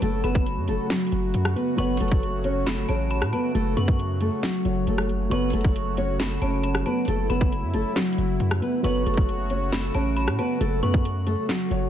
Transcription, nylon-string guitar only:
0.02 0.22 A3 medium
0.02 0.22 A4 loud
0.24 0.44 B3 medium
0.24 0.43 B4 medium
0.68 0.88 A3 medium
0.68 0.88 A4 medium
0.90 1.53 F#3 medium
0.90 1.52 F#4 medium
1.56 1.76 B3 medium
1.56 1.75 B4 medium
1.78 1.98 B3 medium
1.78 1.97 B4 loud
2.00 2.20 A3 medium
2.00 2.20 A4 medium
2.45 2.64 C#4 medium
2.45 2.64 C#5 medium
2.66 2.86 A3 medium
2.66 2.86 A4 medium
2.89 3.31 C#4 medium
2.89 3.30 C#5 medium
3.33 3.53 B3 medium
3.33 3.52 B4 medium
3.55 3.75 A3 medium
3.55 3.74 A4 loud
3.77 3.97 B3 medium
3.77 3.96 B4 medium
4.21 4.41 A3 medium
4.21 4.40 A4 medium
4.43 4.85 F#3 medium
4.43 4.84 F#4 medium
4.88 5.08 A3 medium
4.88 5.07 A4 loud
5.31 5.51 B3 medium
5.31 5.51 B4 loud
5.53 5.73 A3 medium
5.53 5.73 A4 medium
5.98 6.17 C#4 medium
5.98 6.17 C#5 medium
6.19 6.39 A3 medium
6.19 6.39 A4 medium
6.42 6.84 C#4 medium
6.42 6.83 C#5 medium
6.86 7.06 B3 medium
6.86 7.05 B4 medium
7.08 7.28 A3 medium
7.08 7.27 A4 loud
7.30 7.50 B3 medium
7.30 7.49 B4 medium
7.74 7.94 A3 medium
7.74 7.93 A4 medium
7.96 8.59 F#3 medium
7.96 8.58 F#4 medium
8.62 8.82 B3 medium
8.62 8.81 B4 medium
8.84 9.04 B3 medium
8.84 9.03 B4 loud
9.06 9.26 A3 medium
9.06 9.26 A4 medium
9.51 9.70 C#4 medium
9.51 9.70 C#5 medium
9.73 9.92 A3 medium
9.73 9.92 A4 medium
9.95 10.37 C#4 medium
9.95 10.36 C#5 medium
10.39 10.59 B3 medium
10.39 10.58 B4 medium
10.61 10.80 A3 medium
10.61 10.80 A4 loud
10.83 11.02 B3 medium
10.83 11.02 B4 medium
11.27 11.47 A3 medium
11.27 11.46 A4 medium
11.49 11.89 F#3 medium
11.49 11.89 F#4 medium

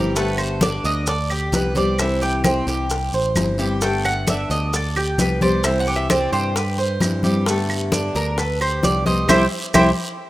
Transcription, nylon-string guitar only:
0.00 0.15 E3 medium
0.00 0.15 G3 medium
0.00 0.16 C4 medium
0.00 0.16 E4 medium
0.15 1.06 D3 medium
0.15 1.07 G3 medium
0.15 1.07 B3 medium
0.15 1.08 G4 medium
1.07 muted nylon-string guitar stroke medium
1.53 1.75 D3 soft
1.53 1.76 G3 soft
1.53 1.76 B3 medium
1.53 1.75 G4 medium
1.76 1.99 G3 medium
1.76 1.99 B3 medium
1.76 1.98 G4 medium
1.99 2.89 C3 medium
1.99 2.89 E3 medium
1.99 2.90 G3 medium
1.99 2.90 C4 medium
1.99 2.90 E4 medium
2.90 muted nylon-string guitar stroke medium
3.36 3.58 E3 soft
3.36 3.58 G3 soft
3.36 3.58 C4 medium
3.36 3.57 E4 medium
3.58 3.81 E3 medium
3.58 3.81 G3 medium
3.58 3.81 C4 medium
3.58 3.81 E4 medium
3.82 4.72 D3 medium
3.82 4.73 G3 medium
3.82 4.73 B3 medium
3.82 4.74 G4 medium
4.74 muted nylon-string guitar stroke medium
5.19 5.41 D3 medium
5.19 5.41 G3 medium
5.19 5.41 B3 medium
5.19 5.40 G4 medium
5.42 5.64 G3 medium
5.42 5.64 B3 medium
5.42 5.64 G4 medium
5.64 6.53 C3 medium
5.64 6.54 E3 medium
5.64 6.55 G3 medium
5.64 6.55 C4 medium
5.64 6.54 E4 medium
6.55 muted nylon-string guitar stroke medium
7.01 7.23 E3 soft
7.01 7.23 G3 medium
7.01 7.23 C4 medium
7.01 7.22 E4 medium
7.23 7.46 E3 medium
7.23 7.46 G3 medium
7.23 7.46 C4 medium
7.23 7.46 E4 medium
7.47 8.36 D3 medium
7.47 8.37 G3 medium
7.47 8.37 B3 medium
7.47 8.38 G4 medium
8.38 muted nylon-string guitar stroke medium
8.82 9.05 D3 medium
8.82 9.06 G3 soft
8.82 9.06 B3 medium
8.82 9.04 G4 medium
9.06 9.26 G3 medium
9.06 9.28 B3 medium
9.06 9.28 G4 medium
9.28 9.43 E3 loud
9.28 9.43 G3 medium
9.28 9.43 C4 loud
9.75 9.90 E3 medium
9.75 9.89 G3 medium
9.75 9.90 C4 medium

